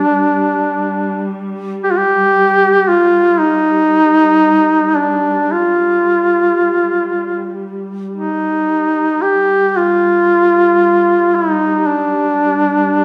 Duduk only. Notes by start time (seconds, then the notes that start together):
Already playing: D4
1.84 G4
1.91 F4
1.98 G4
2.88 F4
3.39 D#4
4.97 D4
5.52 F4
8.15 D#4
9.22 G4
9.77 F4
11.35 D#4
11.87 D4